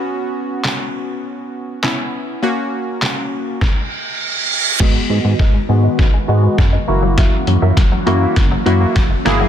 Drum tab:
CC |--------|--------|x-------|--------|
HH |--------|--------|--------|xxxxxxxx|
CP |--x---x-|--x-----|--------|--------|
SD |--o---o-|--o-o---|o-o-o-o-|o-o-o-oo|
BD |--------|----o---|o-o-o-o-|o-o-o-o-|